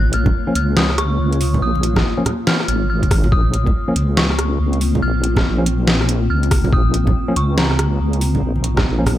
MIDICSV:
0, 0, Header, 1, 6, 480
1, 0, Start_track
1, 0, Key_signature, -5, "minor"
1, 0, Tempo, 425532
1, 1826, Time_signature, 4, 2, 24, 8
1, 10357, End_track
2, 0, Start_track
2, 0, Title_t, "Synth bell"
2, 0, Program_c, 0, 98
2, 0, Note_on_c, 0, 90, 115
2, 154, Note_on_c, 0, 89, 106
2, 157, Note_off_c, 0, 90, 0
2, 619, Note_off_c, 0, 89, 0
2, 633, Note_on_c, 0, 89, 103
2, 739, Note_off_c, 0, 89, 0
2, 869, Note_on_c, 0, 87, 102
2, 1090, Note_off_c, 0, 87, 0
2, 1105, Note_on_c, 0, 85, 102
2, 1780, Note_off_c, 0, 85, 0
2, 1831, Note_on_c, 0, 87, 109
2, 2503, Note_off_c, 0, 87, 0
2, 2790, Note_on_c, 0, 89, 99
2, 3015, Note_off_c, 0, 89, 0
2, 3029, Note_on_c, 0, 89, 99
2, 3254, Note_off_c, 0, 89, 0
2, 3268, Note_on_c, 0, 89, 94
2, 3713, Note_off_c, 0, 89, 0
2, 3746, Note_on_c, 0, 87, 107
2, 4421, Note_off_c, 0, 87, 0
2, 4705, Note_on_c, 0, 85, 100
2, 5380, Note_off_c, 0, 85, 0
2, 5668, Note_on_c, 0, 89, 113
2, 7094, Note_off_c, 0, 89, 0
2, 7108, Note_on_c, 0, 89, 92
2, 7592, Note_on_c, 0, 87, 99
2, 7601, Note_off_c, 0, 89, 0
2, 8309, Note_on_c, 0, 85, 93
2, 8331, Note_off_c, 0, 87, 0
2, 8531, Note_off_c, 0, 85, 0
2, 8549, Note_on_c, 0, 82, 82
2, 10357, Note_off_c, 0, 82, 0
2, 10357, End_track
3, 0, Start_track
3, 0, Title_t, "Ambient pad"
3, 0, Program_c, 1, 92
3, 0, Note_on_c, 1, 58, 75
3, 0, Note_on_c, 1, 65, 73
3, 0, Note_on_c, 1, 73, 86
3, 3730, Note_off_c, 1, 73, 0
3, 3749, Note_on_c, 1, 60, 84
3, 10357, Note_off_c, 1, 58, 0
3, 10357, Note_off_c, 1, 60, 0
3, 10357, Note_off_c, 1, 65, 0
3, 10357, End_track
4, 0, Start_track
4, 0, Title_t, "Tine electric piano"
4, 0, Program_c, 2, 4
4, 533, Note_on_c, 2, 58, 76
4, 533, Note_on_c, 2, 61, 94
4, 534, Note_on_c, 2, 53, 84
4, 587, Note_off_c, 2, 58, 0
4, 587, Note_off_c, 2, 61, 0
4, 588, Note_off_c, 2, 53, 0
4, 2453, Note_on_c, 2, 53, 85
4, 2453, Note_on_c, 2, 61, 93
4, 2454, Note_on_c, 2, 58, 76
4, 2507, Note_off_c, 2, 53, 0
4, 2507, Note_off_c, 2, 61, 0
4, 2508, Note_off_c, 2, 58, 0
4, 4376, Note_on_c, 2, 53, 83
4, 4376, Note_on_c, 2, 58, 80
4, 4377, Note_on_c, 2, 61, 91
4, 4429, Note_off_c, 2, 53, 0
4, 4429, Note_off_c, 2, 58, 0
4, 4429, Note_off_c, 2, 61, 0
4, 6295, Note_on_c, 2, 53, 89
4, 6296, Note_on_c, 2, 58, 75
4, 6296, Note_on_c, 2, 61, 93
4, 6348, Note_off_c, 2, 53, 0
4, 6349, Note_off_c, 2, 58, 0
4, 6349, Note_off_c, 2, 61, 0
4, 8214, Note_on_c, 2, 58, 76
4, 8215, Note_on_c, 2, 53, 81
4, 8215, Note_on_c, 2, 61, 94
4, 8268, Note_off_c, 2, 53, 0
4, 8268, Note_off_c, 2, 58, 0
4, 8269, Note_off_c, 2, 61, 0
4, 10135, Note_on_c, 2, 53, 88
4, 10135, Note_on_c, 2, 58, 79
4, 10135, Note_on_c, 2, 61, 94
4, 10188, Note_off_c, 2, 53, 0
4, 10188, Note_off_c, 2, 58, 0
4, 10188, Note_off_c, 2, 61, 0
4, 10357, End_track
5, 0, Start_track
5, 0, Title_t, "Wobble bass"
5, 0, Program_c, 3, 39
5, 0, Note_on_c, 3, 34, 102
5, 370, Note_off_c, 3, 34, 0
5, 626, Note_on_c, 3, 37, 101
5, 1331, Note_off_c, 3, 37, 0
5, 1346, Note_on_c, 3, 37, 95
5, 1811, Note_off_c, 3, 37, 0
5, 1827, Note_on_c, 3, 34, 97
5, 2291, Note_off_c, 3, 34, 0
5, 3026, Note_on_c, 3, 32, 100
5, 3731, Note_off_c, 3, 32, 0
5, 3745, Note_on_c, 3, 34, 97
5, 4211, Note_off_c, 3, 34, 0
5, 4466, Note_on_c, 3, 37, 94
5, 5171, Note_off_c, 3, 37, 0
5, 5185, Note_on_c, 3, 37, 96
5, 5651, Note_off_c, 3, 37, 0
5, 5667, Note_on_c, 3, 34, 104
5, 6131, Note_off_c, 3, 34, 0
5, 6146, Note_on_c, 3, 34, 98
5, 7091, Note_off_c, 3, 34, 0
5, 7107, Note_on_c, 3, 37, 95
5, 7571, Note_off_c, 3, 37, 0
5, 7585, Note_on_c, 3, 34, 101
5, 8051, Note_off_c, 3, 34, 0
5, 8306, Note_on_c, 3, 37, 98
5, 9011, Note_off_c, 3, 37, 0
5, 9026, Note_on_c, 3, 37, 93
5, 9491, Note_off_c, 3, 37, 0
5, 9506, Note_on_c, 3, 34, 100
5, 9971, Note_off_c, 3, 34, 0
5, 9985, Note_on_c, 3, 34, 101
5, 10357, Note_off_c, 3, 34, 0
5, 10357, End_track
6, 0, Start_track
6, 0, Title_t, "Drums"
6, 144, Note_on_c, 9, 42, 78
6, 257, Note_off_c, 9, 42, 0
6, 292, Note_on_c, 9, 64, 92
6, 293, Note_on_c, 9, 36, 64
6, 405, Note_off_c, 9, 64, 0
6, 406, Note_off_c, 9, 36, 0
6, 625, Note_on_c, 9, 42, 79
6, 738, Note_off_c, 9, 42, 0
6, 864, Note_on_c, 9, 38, 124
6, 869, Note_on_c, 9, 60, 54
6, 977, Note_off_c, 9, 38, 0
6, 982, Note_off_c, 9, 60, 0
6, 1015, Note_on_c, 9, 37, 52
6, 1106, Note_off_c, 9, 37, 0
6, 1106, Note_on_c, 9, 37, 76
6, 1106, Note_on_c, 9, 42, 84
6, 1219, Note_off_c, 9, 37, 0
6, 1219, Note_off_c, 9, 42, 0
6, 1495, Note_on_c, 9, 42, 39
6, 1587, Note_on_c, 9, 46, 94
6, 1608, Note_off_c, 9, 42, 0
6, 1699, Note_off_c, 9, 46, 0
6, 1738, Note_on_c, 9, 64, 84
6, 1851, Note_off_c, 9, 64, 0
6, 1977, Note_on_c, 9, 63, 58
6, 2068, Note_on_c, 9, 42, 76
6, 2090, Note_off_c, 9, 63, 0
6, 2180, Note_off_c, 9, 42, 0
6, 2213, Note_on_c, 9, 36, 64
6, 2214, Note_on_c, 9, 64, 90
6, 2217, Note_on_c, 9, 37, 74
6, 2217, Note_on_c, 9, 38, 38
6, 2326, Note_off_c, 9, 36, 0
6, 2327, Note_off_c, 9, 64, 0
6, 2329, Note_off_c, 9, 37, 0
6, 2329, Note_off_c, 9, 38, 0
6, 2539, Note_on_c, 9, 60, 34
6, 2548, Note_on_c, 9, 64, 79
6, 2549, Note_on_c, 9, 37, 62
6, 2549, Note_on_c, 9, 42, 81
6, 2652, Note_off_c, 9, 60, 0
6, 2661, Note_off_c, 9, 64, 0
6, 2662, Note_off_c, 9, 37, 0
6, 2662, Note_off_c, 9, 42, 0
6, 2787, Note_on_c, 9, 38, 117
6, 2899, Note_off_c, 9, 38, 0
6, 2936, Note_on_c, 9, 37, 53
6, 3027, Note_on_c, 9, 42, 77
6, 3049, Note_off_c, 9, 37, 0
6, 3140, Note_off_c, 9, 42, 0
6, 3414, Note_on_c, 9, 36, 63
6, 3417, Note_on_c, 9, 42, 35
6, 3506, Note_off_c, 9, 36, 0
6, 3506, Note_on_c, 9, 36, 111
6, 3508, Note_on_c, 9, 37, 77
6, 3508, Note_on_c, 9, 46, 88
6, 3530, Note_off_c, 9, 42, 0
6, 3619, Note_off_c, 9, 36, 0
6, 3621, Note_off_c, 9, 37, 0
6, 3621, Note_off_c, 9, 46, 0
6, 3650, Note_on_c, 9, 64, 71
6, 3656, Note_on_c, 9, 60, 59
6, 3746, Note_on_c, 9, 36, 123
6, 3763, Note_off_c, 9, 64, 0
6, 3769, Note_off_c, 9, 60, 0
6, 3859, Note_off_c, 9, 36, 0
6, 3988, Note_on_c, 9, 42, 70
6, 4101, Note_off_c, 9, 42, 0
6, 4134, Note_on_c, 9, 36, 61
6, 4141, Note_on_c, 9, 64, 82
6, 4247, Note_off_c, 9, 36, 0
6, 4254, Note_off_c, 9, 64, 0
6, 4467, Note_on_c, 9, 42, 77
6, 4579, Note_off_c, 9, 42, 0
6, 4706, Note_on_c, 9, 38, 115
6, 4706, Note_on_c, 9, 60, 49
6, 4819, Note_off_c, 9, 38, 0
6, 4819, Note_off_c, 9, 60, 0
6, 4854, Note_on_c, 9, 37, 57
6, 4948, Note_off_c, 9, 37, 0
6, 4948, Note_on_c, 9, 37, 78
6, 4948, Note_on_c, 9, 42, 76
6, 5060, Note_off_c, 9, 37, 0
6, 5060, Note_off_c, 9, 42, 0
6, 5336, Note_on_c, 9, 42, 35
6, 5427, Note_on_c, 9, 46, 92
6, 5448, Note_off_c, 9, 42, 0
6, 5540, Note_off_c, 9, 46, 0
6, 5584, Note_on_c, 9, 64, 82
6, 5697, Note_off_c, 9, 64, 0
6, 5906, Note_on_c, 9, 42, 73
6, 6019, Note_off_c, 9, 42, 0
6, 6052, Note_on_c, 9, 64, 87
6, 6054, Note_on_c, 9, 36, 58
6, 6057, Note_on_c, 9, 37, 82
6, 6057, Note_on_c, 9, 38, 37
6, 6165, Note_off_c, 9, 64, 0
6, 6167, Note_off_c, 9, 36, 0
6, 6169, Note_off_c, 9, 37, 0
6, 6169, Note_off_c, 9, 38, 0
6, 6384, Note_on_c, 9, 60, 37
6, 6388, Note_on_c, 9, 42, 81
6, 6497, Note_off_c, 9, 60, 0
6, 6501, Note_off_c, 9, 42, 0
6, 6627, Note_on_c, 9, 38, 109
6, 6740, Note_off_c, 9, 38, 0
6, 6778, Note_on_c, 9, 37, 58
6, 6866, Note_on_c, 9, 42, 79
6, 6890, Note_off_c, 9, 37, 0
6, 6979, Note_off_c, 9, 42, 0
6, 7255, Note_on_c, 9, 42, 35
6, 7345, Note_on_c, 9, 37, 85
6, 7345, Note_on_c, 9, 46, 98
6, 7346, Note_on_c, 9, 36, 99
6, 7367, Note_off_c, 9, 42, 0
6, 7458, Note_off_c, 9, 37, 0
6, 7458, Note_off_c, 9, 46, 0
6, 7459, Note_off_c, 9, 36, 0
6, 7493, Note_on_c, 9, 64, 78
6, 7498, Note_on_c, 9, 60, 63
6, 7586, Note_on_c, 9, 36, 120
6, 7606, Note_off_c, 9, 64, 0
6, 7611, Note_off_c, 9, 60, 0
6, 7699, Note_off_c, 9, 36, 0
6, 7826, Note_on_c, 9, 42, 76
6, 7939, Note_off_c, 9, 42, 0
6, 7975, Note_on_c, 9, 36, 61
6, 7977, Note_on_c, 9, 64, 95
6, 8087, Note_off_c, 9, 36, 0
6, 8090, Note_off_c, 9, 64, 0
6, 8306, Note_on_c, 9, 42, 81
6, 8419, Note_off_c, 9, 42, 0
6, 8546, Note_on_c, 9, 38, 112
6, 8552, Note_on_c, 9, 60, 54
6, 8659, Note_off_c, 9, 38, 0
6, 8665, Note_off_c, 9, 60, 0
6, 8694, Note_on_c, 9, 37, 59
6, 8787, Note_off_c, 9, 37, 0
6, 8787, Note_on_c, 9, 37, 80
6, 8787, Note_on_c, 9, 42, 76
6, 8899, Note_off_c, 9, 37, 0
6, 8899, Note_off_c, 9, 42, 0
6, 9174, Note_on_c, 9, 42, 36
6, 9264, Note_on_c, 9, 46, 102
6, 9286, Note_off_c, 9, 42, 0
6, 9377, Note_off_c, 9, 46, 0
6, 9417, Note_on_c, 9, 64, 76
6, 9529, Note_off_c, 9, 64, 0
6, 9651, Note_on_c, 9, 63, 55
6, 9745, Note_on_c, 9, 42, 81
6, 9764, Note_off_c, 9, 63, 0
6, 9858, Note_off_c, 9, 42, 0
6, 9894, Note_on_c, 9, 36, 62
6, 9896, Note_on_c, 9, 37, 85
6, 9896, Note_on_c, 9, 38, 36
6, 9896, Note_on_c, 9, 64, 102
6, 10006, Note_off_c, 9, 36, 0
6, 10009, Note_off_c, 9, 37, 0
6, 10009, Note_off_c, 9, 38, 0
6, 10009, Note_off_c, 9, 64, 0
6, 10223, Note_on_c, 9, 64, 89
6, 10226, Note_on_c, 9, 37, 66
6, 10226, Note_on_c, 9, 46, 70
6, 10228, Note_on_c, 9, 60, 37
6, 10336, Note_off_c, 9, 64, 0
6, 10339, Note_off_c, 9, 37, 0
6, 10339, Note_off_c, 9, 46, 0
6, 10341, Note_off_c, 9, 60, 0
6, 10357, End_track
0, 0, End_of_file